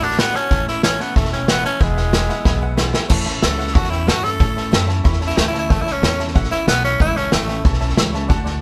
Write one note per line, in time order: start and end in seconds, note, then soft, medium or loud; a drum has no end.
0.00 0.31 A1 loud
0.00 0.21 D4 loud
0.00 0.19 D4 medium
0.00 0.19 F#4 medium
0.00 0.11 D5 medium
0.00 0.12 F#5 medium
0.00 0.12 B5 medium
0.00 snare soft
0.05 0.19 A3 soft
0.11 snare soft
0.17 0.35 D3 medium
0.17 0.35 A3 medium
0.17 0.37 B3 loud
0.17 0.35 D4 medium
0.17 0.34 F#4 medium
0.17 0.27 D5 medium
0.17 0.28 F#5 medium
0.17 0.28 B5 medium
0.17 snare loud
0.17 hi-hat pedal medium
0.33 0.68 C#4 loud
0.33 0.52 D4 medium
0.33 0.51 F#4 medium
0.33 0.43 D5 medium
0.33 0.44 F#5 medium
0.33 0.45 A5 medium
0.33 snare soft
0.38 0.51 A3 soft
0.49 0.96 A1 medium
0.49 0.67 A2 medium
0.49 0.67 E3 medium
0.49 0.68 A3 medium
0.49 0.68 C#4 medium
0.49 0.66 E4 medium
0.49 0.60 C#5 medium
0.49 0.61 E5 medium
0.49 0.61 A5 loud
0.49 kick loud
0.49 snare soft
0.66 0.84 C#4 medium
0.66 0.83 E4 medium
0.66 0.76 C#5 medium
0.66 0.77 E5 medium
0.66 0.77 B5 medium
0.66 snare soft
0.70 0.83 A3 soft
0.82 0.99 A2 medium
0.82 1.00 E3 medium
0.82 1.00 A3 medium
0.82 1.02 C#4 loud
0.82 0.99 C#4 medium
0.82 0.98 E4 medium
0.82 0.92 C#5 medium
0.82 0.93 E5 medium
0.82 0.93 A5 medium
0.82 snare loud
0.82 hi-hat pedal loud
0.99 1.15 A3 soft
0.99 1.16 B3 loud
0.99 1.16 C#4 medium
0.99 1.16 E4 medium
0.99 1.09 C#5 medium
0.99 1.09 E5 medium
0.99 1.10 A5 medium
0.99 snare soft
1.15 1.61 E1 medium
1.15 1.32 E3 medium
1.15 1.32 A3 medium
1.15 1.32 A3 loud
1.15 1.32 C#4 medium
1.15 1.31 E4 medium
1.15 1.25 C#5 medium
1.15 1.26 E5 medium
1.15 1.26 A5 loud
1.15 kick loud
1.15 snare soft
1.25 snare soft
1.31 1.48 A3 medium
1.31 1.50 C#4 medium
1.31 1.48 C#4 medium
1.31 1.48 E4 medium
1.31 1.41 C#5 medium
1.31 1.42 E5 medium
1.31 1.42 G5 medium
1.31 snare soft
1.46 1.64 A2 medium
1.46 1.65 E3 medium
1.46 1.65 A3 medium
1.46 1.65 B3 loud
1.46 1.64 C#4 medium
1.46 1.63 E4 loud
1.46 1.57 C#5 medium
1.46 1.58 E5 medium
1.46 1.58 G5 medium
1.46 snare loud
1.46 hi-hat pedal medium
1.63 1.80 A3 soft
1.63 1.81 C#4 medium
1.63 1.83 C#4 medium
1.63 1.80 E4 medium
1.63 1.73 C#5 medium
1.63 1.74 E5 medium
1.63 1.74 A5 medium
1.63 snare soft
1.79 2.26 E1 medium
1.79 1.96 E2 medium
1.79 1.97 B2 medium
1.79 1.97 E3 medium
1.79 1.97 G#3 medium
1.79 2.78 G#3 medium
1.79 1.96 B3 medium
1.79 1.96 E4 medium
1.79 1.90 B4 medium
1.79 1.90 E5 medium
1.79 1.91 G#5 loud
1.79 kick loud
1.79 snare soft
1.96 2.13 E3 soft
1.96 2.13 G#3 medium
1.96 2.14 B3 medium
1.96 2.13 E4 soft
1.96 2.06 B4 medium
1.96 2.06 E5 medium
1.96 2.07 F#5 medium
1.96 snare soft
2.11 2.29 E2 medium
2.11 2.29 B2 medium
2.11 2.30 E3 medium
2.11 2.30 G#3 loud
2.11 2.22 B4 medium
2.11 2.22 E5 medium
2.11 2.23 G#5 medium
2.11 snare loud
2.11 hi-hat pedal medium
2.15 2.29 B3 medium
2.15 2.28 E4 medium
2.27 2.45 G#3 medium
2.27 2.46 B3 medium
2.27 2.46 E4 medium
2.27 2.38 B4 medium
2.27 2.39 E5 medium
2.27 2.39 F#5 loud
2.27 snare soft
2.32 2.44 E3 medium
2.45 2.91 B1 medium
2.45 2.62 E3 medium
2.45 2.62 G#3 medium
2.45 2.61 B3 medium
2.45 2.60 E4 medium
2.45 2.55 B4 loud
2.45 2.56 E5 loud
2.45 2.56 G#5 loud
2.45 kick loud
2.45 snare medium
2.60 2.76 E3 medium
2.60 2.77 G#3 medium
2.60 2.77 B3 medium
2.60 2.77 E4 medium
2.60 2.71 B4 medium
2.60 2.71 E5 medium
2.60 2.72 F#5 loud
2.60 2.77 G#5 medium
2.76 2.94 E2 medium
2.76 2.94 B2 medium
2.76 2.94 E3 loud
2.76 2.93 G#3 medium
2.76 2.93 B3 loud
2.76 2.92 E4 loud
2.76 2.87 B4 medium
2.76 2.92 E5 medium
2.76 2.88 G#5 loud
2.76 snare loud
2.76 hi-hat pedal medium
2.93 3.08 E3 medium
2.93 3.10 G#3 medium
2.93 3.10 B3 medium
2.93 3.10 E4 medium
2.93 3.03 B4 loud
2.93 3.04 E5 medium
2.93 3.04 G#5 loud
2.93 snare medium
3.08 3.42 A1 medium
3.08 3.26 A2 medium
3.08 3.26 E3 medium
3.08 3.27 A3 medium
3.08 3.25 C#4 medium
3.08 3.24 E4 loud
3.08 3.19 C#5 loud
3.08 3.20 E5 loud
3.08 3.20 A5 loud
3.08 kick loud
3.08 snare soft
3.08 crash loud
3.25 3.42 A3 medium
3.25 3.43 C#4 medium
3.25 3.42 E4 medium
3.25 3.35 C#5 medium
3.25 3.36 E5 medium
3.25 3.36 A5 medium
3.25 snare soft
3.41 3.74 C#2 medium
3.41 3.59 A2 medium
3.41 3.59 E3 medium
3.41 3.60 A3 medium
3.41 3.59 C#4 medium
3.41 3.58 E4 medium
3.41 3.76 A4 medium
3.41 3.52 C#5 medium
3.41 3.53 E5 medium
3.41 3.53 F#5 medium
3.41 snare loud
3.41 hi-hat pedal medium
3.57 3.75 C#4 medium
3.57 3.75 E4 medium
3.57 3.68 C#5 medium
3.57 3.69 E5 medium
3.57 3.69 F#5 medium
3.57 snare soft
3.61 3.74 A3 soft
3.67 snare soft
3.75 4.07 E2 loud
3.75 3.91 E3 medium
3.75 3.92 A3 medium
3.75 3.91 C#4 medium
3.75 3.90 E4 medium
3.75 3.92 F#4 loud
3.75 3.85 C#5 loud
3.75 3.85 E5 medium
3.75 3.86 A5 loud
3.75 kick loud
3.75 snare soft
3.84 snare soft
3.90 4.07 A3 soft
3.90 4.07 C#4 soft
3.90 4.10 E4 medium
3.90 4.07 E4 medium
3.90 4.01 C#5 medium
3.90 4.01 E5 medium
3.90 4.02 G5 medium
3.90 snare soft
4.06 4.39 G2 medium
4.06 4.24 A2 medium
4.06 4.24 E3 medium
4.06 4.24 A3 medium
4.06 4.23 C#4 medium
4.06 4.25 F#4 loud
4.06 4.17 C#5 medium
4.06 4.17 E5 medium
4.06 4.18 A5 medium
4.06 snare loud
4.06 hi-hat pedal medium
4.22 4.39 A3 soft
4.22 4.39 C#4 soft
4.22 4.40 E4 medium
4.22 4.87 A4 loud
4.22 4.33 C#5 medium
4.22 4.34 E5 medium
4.22 4.34 B5 medium
4.22 snare soft
4.39 4.56 A2 medium
4.39 4.72 A2 medium
4.39 4.56 E3 medium
4.39 4.57 A3 medium
4.39 4.56 C#4 medium
4.39 4.54 E4 medium
4.39 4.50 C#5 loud
4.39 4.50 E5 medium
4.39 4.51 A5 medium
4.39 kick loud
4.39 snare soft
4.55 4.71 A3 soft
4.55 4.71 C#4 medium
4.55 4.71 E4 medium
4.55 4.66 C#5 medium
4.55 4.67 E5 medium
4.55 4.67 A5 medium
4.55 snare soft
4.71 5.04 F#2 medium
4.71 4.88 A2 medium
4.71 4.89 E3 loud
4.71 4.88 A3 loud
4.71 4.87 C#4 loud
4.71 4.86 E4 loud
4.71 4.82 C#5 medium
4.71 4.82 E5 medium
4.71 4.83 A5 medium
4.71 snare loud
4.71 hi-hat pedal loud
4.87 5.04 A3 soft
4.87 5.05 C#4 medium
4.87 5.04 E4 medium
4.87 4.98 C#5 medium
4.87 4.98 E5 medium
4.87 4.99 A5 loud
4.87 snare soft
5.04 5.37 E2 medium
5.04 5.21 E3 medium
5.04 5.21 A3 medium
5.04 5.20 C#4 medium
5.04 5.19 E4 loud
5.04 5.14 C#5 loud
5.04 5.15 E5 loud
5.04 5.15 B5 loud
5.04 kick loud
5.04 snare soft
5.13 snare soft
5.20 5.37 A3 soft
5.20 5.37 C#4 medium
5.20 5.37 E4 medium
5.20 5.31 C#5 medium
5.20 5.31 E5 medium
5.20 5.32 A5 medium
5.20 snare soft
5.27 5.39 E4 medium
5.27 snare soft
5.36 5.69 D2 medium
5.36 5.54 A2 medium
5.36 5.54 E3 medium
5.36 5.47 A3 loud
5.36 5.54 A3 medium
5.36 5.53 C#4 loud
5.36 5.52 E4 medium
5.36 5.47 C#5 medium
5.36 5.47 E5 medium
5.36 5.48 A5 medium
5.36 snare loud
5.36 hi-hat pedal medium
5.48 5.58 E4 loud
5.48 5.63 C#5 medium
5.53 5.70 A3 soft
5.53 5.70 C#4 soft
5.53 5.70 E4 medium
5.53 5.63 E5 medium
5.53 5.64 A5 medium
5.53 snare soft
5.59 5.72 E4 loud
5.69 6.01 C#2 medium
5.69 5.87 A2 medium
5.69 5.87 E3 medium
5.69 5.83 A3 loud
5.69 5.87 A3 medium
5.69 5.87 C#4 medium
5.69 5.85 E4 medium
5.69 5.79 C#5 medium
5.69 5.80 E5 medium
5.69 5.80 A5 loud
5.69 kick loud
5.69 snare soft
5.82 5.94 E4 loud
5.82 5.95 C#5 medium
5.86 6.02 A3 soft
5.86 6.03 C#4 soft
5.86 6.03 E4 medium
5.86 5.96 E5 medium
5.86 5.97 A5 medium
5.86 snare soft
5.93 6.24 C#4 loud
6.02 6.34 E2 loud
6.02 6.19 A2 medium
6.02 6.19 E3 medium
6.02 6.19 A3 medium
6.02 6.19 C#4 medium
6.02 6.18 E4 medium
6.02 6.12 C#5 medium
6.02 6.12 E5 medium
6.02 6.13 A5 medium
6.02 snare loud
6.02 hi-hat pedal medium
6.18 6.35 A3 soft
6.18 6.36 C#4 medium
6.18 6.36 E4 medium
6.18 6.28 C#5 medium
6.18 6.29 E5 medium
6.18 6.29 A5 medium
6.18 snare soft
6.28 snare soft
6.34 6.51 A1 medium
6.34 6.52 E3 medium
6.34 6.52 A3 medium
6.34 6.52 C#4 medium
6.34 6.50 E4 medium
6.34 6.45 C#5 loud
6.34 6.45 E5 loud
6.34 6.45 F#5 loud
6.34 kick loud
6.34 snare soft
6.44 snare soft
6.51 6.67 A3 medium
6.51 6.68 C#4 medium
6.51 6.67 E4 loud
6.51 6.68 E4 medium
6.51 6.61 C#5 medium
6.51 6.62 E5 medium
6.51 6.62 B5 medium
6.51 muted upright bass stroke soft
6.51 snare soft
6.67 6.99 B1 medium
6.67 6.84 A2 medium
6.67 6.84 E3 loud
6.67 6.84 A3 medium
6.67 6.84 B3 loud
6.67 6.84 C#4 medium
6.67 6.82 E4 loud
6.67 6.78 C#5 medium
6.67 6.78 E5 medium
6.67 6.78 A5 medium
6.67 snare loud
6.67 hi-hat pedal medium
6.84 7.00 A3 soft
6.84 7.00 C#4 loud
6.84 7.01 C#4 soft
6.84 7.00 E4 medium
6.84 6.94 C#5 medium
6.84 6.95 E5 medium
6.84 6.95 F#5 medium
6.84 snare soft
6.99 7.32 C#2 medium
6.99 7.17 A2 medium
6.99 7.17 E3 medium
6.99 7.17 A3 medium
6.99 7.17 C#4 medium
6.99 7.18 E4 loud
6.99 7.15 E4 medium
6.99 7.10 C#5 loud
6.99 7.10 E5 medium
6.99 7.10 F#5 loud
6.99 kick loud
6.99 snare soft
7.15 7.32 A3 soft
7.15 7.34 C#4 loud
7.15 7.33 C#4 medium
7.15 7.33 E4 medium
7.15 7.26 C#5 medium
7.15 7.26 E5 medium
7.15 7.27 A5 medium
7.15 snare soft
7.31 7.64 A1 loud
7.31 7.49 A2 medium
7.31 7.49 E3 medium
7.31 7.64 A3 loud
7.31 7.50 A3 medium
7.31 7.49 C#4 medium
7.31 7.48 E4 loud
7.31 7.42 C#5 medium
7.31 7.42 E5 medium
7.31 7.43 A5 medium
7.31 snare loud
7.31 hi-hat pedal loud
7.47 7.65 A3 soft
7.47 7.65 C#4 medium
7.47 7.65 E4 medium
7.47 7.58 C#5 medium
7.47 7.59 E5 medium
7.47 7.59 G5 medium
7.47 snare soft
7.63 7.97 B1 medium
7.63 7.81 E3 medium
7.63 7.81 A3 medium
7.63 7.81 C#4 medium
7.63 7.79 E4 medium
7.63 7.74 C#5 loud
7.63 7.75 E5 medium
7.63 7.75 A5 loud
7.63 kick loud
7.63 snare soft
7.73 snare soft
7.80 7.98 A3 medium
7.80 7.98 C#4 medium
7.80 7.97 E4 medium
7.80 7.91 C#5 medium
7.80 7.91 E5 medium
7.80 7.91 A5 loud
7.80 snare soft
7.89 snare soft
7.96 8.29 C#2 medium
7.96 8.14 A2 medium
7.96 8.14 E3 medium
7.96 8.15 A3 medium
7.96 8.15 C#4 loud
7.96 8.13 E4 medium
7.96 8.07 C#5 medium
7.96 8.12 E5 medium
7.96 8.08 B5 loud
7.96 snare loud
7.96 hi-hat pedal medium
8.13 8.31 C#4 medium
8.13 8.30 E4 medium
8.13 8.23 C#5 loud
8.13 8.24 E5 medium
8.13 8.24 A5 loud
8.13 snare soft
8.17 8.29 A3 soft
8.28 8.62 D2 medium
8.28 8.47 D3 medium
8.28 8.47 A3 medium
8.28 8.46 D4 medium
8.28 8.45 F#4 loud
8.28 8.39 D5 loud
8.28 8.39 F#5 loud
8.28 8.40 A5 loud
8.28 kick loud
8.28 snare soft
8.44 8.62 A3 soft
8.44 8.62 D4 medium
8.44 8.62 F#4 medium
8.44 8.55 D5 medium
8.44 8.56 F#5 medium
8.44 8.56 A5 medium
8.44 snare soft